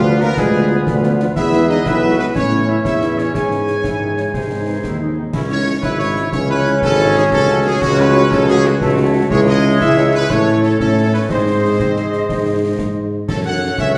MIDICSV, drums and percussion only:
0, 0, Header, 1, 2, 480
1, 0, Start_track
1, 0, Key_signature, 4, "minor"
1, 0, Tempo, 331126
1, 542, Time_signature, 6, 3, 24, 8
1, 20264, End_track
2, 0, Start_track
2, 0, Title_t, "Drums"
2, 303, Note_on_c, 9, 38, 61
2, 448, Note_off_c, 9, 38, 0
2, 542, Note_on_c, 9, 35, 90
2, 542, Note_on_c, 9, 38, 81
2, 687, Note_off_c, 9, 35, 0
2, 687, Note_off_c, 9, 38, 0
2, 1260, Note_on_c, 9, 35, 85
2, 1260, Note_on_c, 9, 38, 87
2, 1405, Note_off_c, 9, 35, 0
2, 1405, Note_off_c, 9, 38, 0
2, 1503, Note_on_c, 9, 38, 60
2, 1648, Note_off_c, 9, 38, 0
2, 1740, Note_on_c, 9, 38, 60
2, 1885, Note_off_c, 9, 38, 0
2, 1980, Note_on_c, 9, 35, 84
2, 1980, Note_on_c, 9, 38, 81
2, 1980, Note_on_c, 9, 49, 39
2, 2125, Note_off_c, 9, 35, 0
2, 2125, Note_off_c, 9, 38, 0
2, 2125, Note_off_c, 9, 49, 0
2, 2222, Note_on_c, 9, 38, 61
2, 2367, Note_off_c, 9, 38, 0
2, 2463, Note_on_c, 9, 38, 61
2, 2608, Note_off_c, 9, 38, 0
2, 2700, Note_on_c, 9, 35, 90
2, 2700, Note_on_c, 9, 38, 81
2, 2845, Note_off_c, 9, 35, 0
2, 2845, Note_off_c, 9, 38, 0
2, 3178, Note_on_c, 9, 38, 59
2, 3323, Note_off_c, 9, 38, 0
2, 3416, Note_on_c, 9, 35, 85
2, 3416, Note_on_c, 9, 38, 77
2, 3561, Note_off_c, 9, 35, 0
2, 3561, Note_off_c, 9, 38, 0
2, 4132, Note_on_c, 9, 35, 82
2, 4132, Note_on_c, 9, 38, 78
2, 4277, Note_off_c, 9, 35, 0
2, 4277, Note_off_c, 9, 38, 0
2, 4373, Note_on_c, 9, 38, 61
2, 4518, Note_off_c, 9, 38, 0
2, 4616, Note_on_c, 9, 38, 59
2, 4761, Note_off_c, 9, 38, 0
2, 4855, Note_on_c, 9, 35, 77
2, 4855, Note_on_c, 9, 38, 82
2, 4855, Note_on_c, 9, 49, 35
2, 5000, Note_off_c, 9, 35, 0
2, 5000, Note_off_c, 9, 38, 0
2, 5000, Note_off_c, 9, 49, 0
2, 5093, Note_on_c, 9, 38, 55
2, 5238, Note_off_c, 9, 38, 0
2, 5330, Note_on_c, 9, 38, 51
2, 5475, Note_off_c, 9, 38, 0
2, 5569, Note_on_c, 9, 35, 82
2, 5569, Note_on_c, 9, 38, 80
2, 5714, Note_off_c, 9, 35, 0
2, 5714, Note_off_c, 9, 38, 0
2, 6051, Note_on_c, 9, 38, 52
2, 6196, Note_off_c, 9, 38, 0
2, 6293, Note_on_c, 9, 35, 84
2, 6293, Note_on_c, 9, 38, 56
2, 6438, Note_off_c, 9, 35, 0
2, 6438, Note_off_c, 9, 38, 0
2, 7013, Note_on_c, 9, 35, 74
2, 7013, Note_on_c, 9, 38, 75
2, 7158, Note_off_c, 9, 35, 0
2, 7158, Note_off_c, 9, 38, 0
2, 7733, Note_on_c, 9, 35, 88
2, 7733, Note_on_c, 9, 38, 75
2, 7733, Note_on_c, 9, 49, 60
2, 7878, Note_off_c, 9, 35, 0
2, 7878, Note_off_c, 9, 38, 0
2, 7878, Note_off_c, 9, 49, 0
2, 8453, Note_on_c, 9, 35, 82
2, 8453, Note_on_c, 9, 38, 78
2, 8598, Note_off_c, 9, 35, 0
2, 8598, Note_off_c, 9, 38, 0
2, 8694, Note_on_c, 9, 38, 55
2, 8839, Note_off_c, 9, 38, 0
2, 8933, Note_on_c, 9, 38, 63
2, 9078, Note_off_c, 9, 38, 0
2, 9169, Note_on_c, 9, 35, 87
2, 9169, Note_on_c, 9, 38, 81
2, 9314, Note_off_c, 9, 35, 0
2, 9314, Note_off_c, 9, 38, 0
2, 9646, Note_on_c, 9, 38, 58
2, 9791, Note_off_c, 9, 38, 0
2, 9890, Note_on_c, 9, 35, 84
2, 9890, Note_on_c, 9, 38, 66
2, 10035, Note_off_c, 9, 35, 0
2, 10035, Note_off_c, 9, 38, 0
2, 10613, Note_on_c, 9, 35, 86
2, 10613, Note_on_c, 9, 38, 68
2, 10613, Note_on_c, 9, 49, 35
2, 10758, Note_off_c, 9, 35, 0
2, 10758, Note_off_c, 9, 38, 0
2, 10758, Note_off_c, 9, 49, 0
2, 11334, Note_on_c, 9, 35, 93
2, 11334, Note_on_c, 9, 38, 86
2, 11479, Note_off_c, 9, 35, 0
2, 11479, Note_off_c, 9, 38, 0
2, 11575, Note_on_c, 9, 38, 58
2, 11720, Note_off_c, 9, 38, 0
2, 11817, Note_on_c, 9, 38, 61
2, 11962, Note_off_c, 9, 38, 0
2, 12054, Note_on_c, 9, 35, 92
2, 12054, Note_on_c, 9, 38, 86
2, 12199, Note_off_c, 9, 35, 0
2, 12199, Note_off_c, 9, 38, 0
2, 12537, Note_on_c, 9, 38, 52
2, 12682, Note_off_c, 9, 38, 0
2, 12773, Note_on_c, 9, 35, 90
2, 12773, Note_on_c, 9, 38, 75
2, 12918, Note_off_c, 9, 35, 0
2, 12918, Note_off_c, 9, 38, 0
2, 13493, Note_on_c, 9, 35, 98
2, 13493, Note_on_c, 9, 38, 64
2, 13493, Note_on_c, 9, 49, 37
2, 13638, Note_off_c, 9, 35, 0
2, 13638, Note_off_c, 9, 38, 0
2, 13638, Note_off_c, 9, 49, 0
2, 14218, Note_on_c, 9, 35, 77
2, 14218, Note_on_c, 9, 38, 87
2, 14363, Note_off_c, 9, 35, 0
2, 14363, Note_off_c, 9, 38, 0
2, 14456, Note_on_c, 9, 38, 60
2, 14601, Note_off_c, 9, 38, 0
2, 14693, Note_on_c, 9, 38, 57
2, 14838, Note_off_c, 9, 38, 0
2, 14932, Note_on_c, 9, 35, 84
2, 14932, Note_on_c, 9, 38, 80
2, 15077, Note_off_c, 9, 35, 0
2, 15077, Note_off_c, 9, 38, 0
2, 15416, Note_on_c, 9, 38, 47
2, 15561, Note_off_c, 9, 38, 0
2, 15659, Note_on_c, 9, 35, 77
2, 15659, Note_on_c, 9, 38, 67
2, 15804, Note_off_c, 9, 35, 0
2, 15804, Note_off_c, 9, 38, 0
2, 16377, Note_on_c, 9, 35, 82
2, 16377, Note_on_c, 9, 38, 67
2, 16377, Note_on_c, 9, 49, 34
2, 16522, Note_off_c, 9, 35, 0
2, 16522, Note_off_c, 9, 38, 0
2, 16522, Note_off_c, 9, 49, 0
2, 17102, Note_on_c, 9, 35, 84
2, 17102, Note_on_c, 9, 38, 77
2, 17247, Note_off_c, 9, 35, 0
2, 17247, Note_off_c, 9, 38, 0
2, 17344, Note_on_c, 9, 38, 57
2, 17489, Note_off_c, 9, 38, 0
2, 17581, Note_on_c, 9, 38, 53
2, 17726, Note_off_c, 9, 38, 0
2, 17822, Note_on_c, 9, 35, 84
2, 17822, Note_on_c, 9, 38, 69
2, 17966, Note_off_c, 9, 35, 0
2, 17966, Note_off_c, 9, 38, 0
2, 18536, Note_on_c, 9, 35, 82
2, 18536, Note_on_c, 9, 38, 83
2, 18681, Note_off_c, 9, 35, 0
2, 18681, Note_off_c, 9, 38, 0
2, 19260, Note_on_c, 9, 35, 89
2, 19260, Note_on_c, 9, 38, 67
2, 19260, Note_on_c, 9, 49, 56
2, 19404, Note_off_c, 9, 35, 0
2, 19404, Note_off_c, 9, 38, 0
2, 19404, Note_off_c, 9, 49, 0
2, 19979, Note_on_c, 9, 35, 82
2, 19979, Note_on_c, 9, 38, 84
2, 20124, Note_off_c, 9, 35, 0
2, 20124, Note_off_c, 9, 38, 0
2, 20264, End_track
0, 0, End_of_file